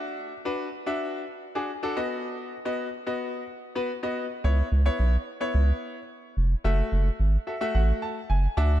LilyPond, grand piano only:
\new Staff \with { instrumentName = "Grand piano" } { \time 4/4 \key cis \minor \tempo 4 = 109 << { r1 | r1 | r1 | r4. e''8 fis''8 a''8 gis''8 a''8 | } \\ { <d' fis' e''>8 r16 <d' fis' b'>8 r16 <d' fis' e''>8. r8 <d' fis' gis'>16 r16 <d' fis' a'>16 <b fis' dis''>8~ | <b fis' dis''>8 r16 <b fis' dis''>8 r16 <b fis' dis''>8. r8 <b fis' b'>16 r16 <b fis' dis''>8 r16 | <b e' cis''>8 r16 <b e' cis''>8 r8 <b e' cis''>4 r4 r16 | <a fis' e''>8. r8. <fis' a'>16 <a fis' e''>4 r8. <d' fis' e''>8 | } >> }